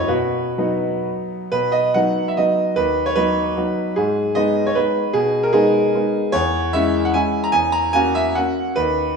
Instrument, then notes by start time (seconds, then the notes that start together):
grand piano
Already playing: F#2 F#3 A#3 E4 B4 C#5 D#5
0.08 B2 F#4 B4
0.58 F#3 B3 D#4
1.52 B2 B4
1.72 D#5
1.94 F#3 B3 D#4 F#5
2.28 E5
2.37 F#3 B3 D#4 D#5
2.76 D#2 B4
3.06 C#5
3.15 F#3 B3 D#4 B4
3.57 F#3 B3 D#4
3.96 G#2 G#4
4.35 G#3 B3 D#4 D#5
4.66 C#5
4.75 G#3 B3 D#4 B4
5.13 B2 G#4
5.43 A#4
5.53 G#3 B3 D#4 G#4
5.95 G#3 B3 D#4
6.32 E2 C#5
6.73 G#3 C#4 E4 E5
7.05 F#5
7.14 G#3 C#4 E4 G#5
7.44 A#5
7.52 E2 G#5
7.72 A#5
7.93 A#3 C#4 F#4 G#5
8.15 E5
8.35 A#3 C#4 F#4 F#5
8.76 D#2 B4